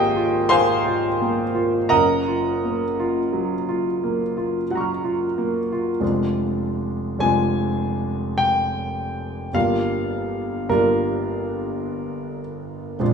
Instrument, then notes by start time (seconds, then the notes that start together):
grand piano
Already playing: G#1 D#3 A#3 F4 G4 G#4 C5 C#5 D#5 F5 G5 G#5
0.16 F4
0.49 D#3 C5 F5 G#5 C6
0.86 F4
1.21 A#3
1.55 F4
1.89 F#1 A#4 D#5 F#5 A#5
2.28 F4
2.65 A#3
3.00 F4
3.33 F#3
3.69 F4
4.03 A#3
4.37 F4
4.71 F#3 F#5
4.75 A#5 C#6
4.80 F6
5.04 F4
5.38 A#3
5.72 F4
6.00 F1 G#3 C4 D4 F4
7.19 F1 G#3 C4 D4 F4 G#5
8.38 G5
9.53 G1 G3 A#3 D4 F4 F5
10.69 G1 G3 A#3 D4 F4 A#4
12.99 A#1 G#3 C4 D4 F4